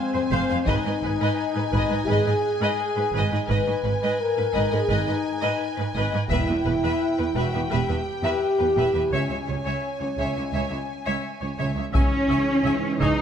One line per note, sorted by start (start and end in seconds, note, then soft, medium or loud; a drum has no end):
0.00 0.66 C4 medium
0.00 0.64 G#5 medium
0.14 0.22 F2 soft
0.14 0.21 C5 soft
0.31 0.39 F1 medium
0.31 0.40 F2 medium
0.31 0.48 C5 medium
0.31 0.47 F5 medium
0.49 0.57 F2 soft
0.49 0.57 C5 medium
0.49 0.56 F5 medium
0.66 0.74 G#1 medium
0.66 0.74 G#2 medium
0.66 2.08 D#4 medium
0.66 0.84 B4 medium
0.66 0.83 D#5 medium
0.66 3.45 G#5 medium
0.66 taiko medium
0.85 0.92 G#2 soft
0.85 0.93 B4 soft
0.85 0.92 D#5 soft
1.02 1.09 G#1 soft
1.02 1.10 G#2 soft
1.02 1.10 B4 soft
1.02 1.11 B4 soft
1.21 1.28 G#2 medium
1.21 1.37 B4 medium
1.21 1.37 D#5 medium
1.56 1.63 G#2 soft
1.56 1.63 B4 soft
1.56 1.64 B4 soft
1.71 1.80 G#1 medium
1.71 1.80 G#2 medium
1.71 1.88 B4 medium
1.71 taiko soft
1.76 1.91 D#5 medium
1.89 1.98 G#2 soft
1.89 1.97 B4 soft
1.89 1.99 D#5 soft
2.07 2.15 G#1 medium
2.07 2.15 G#2 medium
2.07 3.32 G#4 medium
2.07 2.24 B4 medium
2.07 2.25 D#5 medium
2.26 2.33 G#2 soft
2.26 2.33 B4 soft
2.26 2.33 D#5 soft
2.61 2.68 G#2 medium
2.61 2.77 B4 medium
2.61 2.78 D#5 medium
2.96 3.03 G#2 soft
2.96 3.03 B4 medium
2.96 3.04 B4 soft
3.14 3.21 G#1 medium
3.14 3.21 G#2 medium
3.14 3.29 B4 medium
3.14 3.32 D#5 medium
3.30 3.39 G#2 soft
3.30 3.38 B4 medium
3.30 3.40 D#5 medium
3.48 3.57 G#1 medium
3.48 3.56 G#2 medium
3.48 3.64 B4 medium
3.48 4.18 B4 medium
3.48 3.66 D#5 medium
3.48 6.28 G#5 medium
3.65 3.73 G#2 soft
3.65 3.73 B4 soft
3.65 3.75 D#5 soft
3.84 3.91 G#1 soft
3.84 3.91 G#2 soft
3.84 3.91 B4 soft
3.84 3.92 B4 soft
4.02 4.09 G#2 medium
4.02 4.19 B4 medium
4.02 4.19 D#5 soft
4.20 4.73 A#4 medium
4.37 4.45 G#2 soft
4.37 4.44 B4 soft
4.37 4.45 B4 soft
4.53 4.62 G#1 medium
4.53 4.61 G#2 medium
4.53 4.71 B4 medium
4.53 4.70 D#5 medium
4.71 4.79 G#2 soft
4.71 4.91 G#4 medium
4.71 4.79 B4 soft
4.71 4.78 D#5 soft
4.89 4.97 G#1 medium
4.89 4.97 G#2 medium
4.89 5.95 D#4 medium
4.89 5.06 B4 medium
4.89 5.06 D#5 medium
5.07 5.15 G#2 soft
5.07 5.15 B4 soft
5.07 5.14 D#5 soft
5.41 5.50 G#2 medium
5.41 5.59 B4 medium
5.41 5.58 D#5 medium
5.76 5.85 G#2 soft
5.76 5.84 B4 soft
5.76 5.86 B4 soft
5.94 6.03 G#1 medium
5.94 6.02 G#2 medium
5.94 6.13 B4 medium
5.94 6.09 D#5 soft
6.10 6.20 G#2 soft
6.10 6.18 D#5 soft
6.14 6.21 B4 soft
6.29 6.37 E1 medium
6.29 6.39 E2 medium
6.29 7.33 E4 medium
6.29 6.47 B4 soft
6.29 6.44 E5 medium
6.29 9.10 G5 medium
6.29 taiko medium
6.46 6.55 B4 soft
6.46 6.53 E5 soft
6.50 6.57 E2 soft
6.65 6.73 E1 soft
6.65 6.74 E2 soft
6.65 6.72 B4 soft
6.65 6.73 B4 soft
6.83 6.91 E2 medium
6.83 7.00 B4 soft
6.83 7.00 E5 soft
7.18 7.26 E2 soft
7.18 7.25 B4 soft
7.18 7.26 B4 soft
7.34 7.43 E1 soft
7.34 7.44 E2 soft
7.34 7.72 F#4 medium
7.34 7.51 B4 soft
7.34 7.52 E5 soft
7.52 7.62 E2 soft
7.52 7.60 B4 soft
7.52 7.60 E5 soft
7.70 7.78 E1 soft
7.70 7.79 E2 soft
7.70 9.10 G4 medium
7.70 7.87 B4 soft
7.70 7.87 E5 soft
7.88 7.97 E2 soft
7.88 7.95 B4 soft
7.88 7.95 E5 soft
8.23 8.31 E2 soft
8.23 8.41 B4 soft
8.23 8.41 E5 soft
8.58 8.67 E2 soft
8.58 8.66 B4 soft
8.76 8.84 E1 soft
8.76 8.84 E2 soft
8.76 8.93 B4 soft
8.76 8.93 E5 soft
8.94 9.02 E2 soft
8.94 9.01 B4 soft
8.94 9.01 E5 soft
9.11 9.19 C#2 soft
9.11 9.20 C#2 soft
9.11 11.21 C#4 soft
9.11 9.28 C#5 soft
9.11 9.28 E5 soft
9.11 11.71 G#5 soft
9.29 9.38 C#2 soft
9.29 9.36 C#5 soft
9.29 9.36 E5 soft
9.47 9.55 C#2 soft
9.47 9.56 C#2 soft
9.47 9.54 C#5 soft
9.47 9.55 C#5 soft
9.65 9.73 C#2 soft
9.65 9.82 C#5 soft
9.65 9.82 E5 soft
10.00 10.09 C#2 soft
10.00 10.07 C#5 soft
10.00 10.08 C#5 soft
10.18 10.25 C#2 soft
10.18 10.27 C#2 soft
10.18 10.35 C#5 soft
10.18 10.35 E5 soft
10.36 10.44 C#2 soft
10.36 10.43 C#5 soft
10.36 10.44 E5 soft
10.53 10.60 C#2 soft
10.53 10.61 C#2 soft
10.53 10.69 C#5 soft
10.53 10.67 E5 soft
10.69 10.79 C#2 soft
10.69 10.77 C#5 soft
10.69 10.76 E5 soft
11.06 11.14 C#2 soft
11.06 11.23 C#5 soft
11.06 11.23 E5 soft
11.40 11.49 C#2 soft
11.40 11.48 C#5 soft
11.40 11.49 C#5 soft
11.58 11.66 C#2 soft
11.58 11.74 C#5 soft
11.58 11.76 E5 soft
11.76 11.84 C#2 soft
11.76 11.83 C#5 soft
11.76 11.85 E5 soft
11.93 12.02 C#2 medium
11.93 13.21 G#2 medium
11.93 13.21 E3 medium
11.93 13.21 G#3 medium
11.93 12.96 C#4 medium
11.93 13.21 G#4 medium
11.93 12.96 C#5 medium
11.93 12.01 E5 soft
11.93 12.02 G#5 soft
11.93 taiko medium
12.29 12.37 C#2 soft
12.29 12.37 E5 soft
12.29 12.40 G#5 soft
12.64 12.73 C#2 soft
12.64 12.72 E5 soft
12.64 12.74 G#5 soft
12.99 13.07 C#2 soft
12.99 13.21 D#4 medium
12.99 13.08 C#5 soft
12.99 13.21 D#5 medium
12.99 13.08 E5 soft
12.99 13.10 G#5 soft
12.99 taiko medium